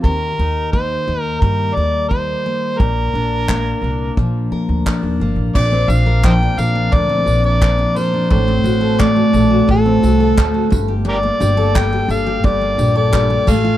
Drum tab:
CC |--------|--------|x-------|--------|
TB |--------|--------|-x-x-x-x|-x-x-x-x|
CP |--------|--x---x-|--x---x-|--x---x-|
BD |o-o-o-o-|o-o-o-o-|o-o-o-o-|o-o-o-oo|

CC |-------x|
TB |-x-x-x-x|
CP |--x---x-|
BD |--o-o-oo|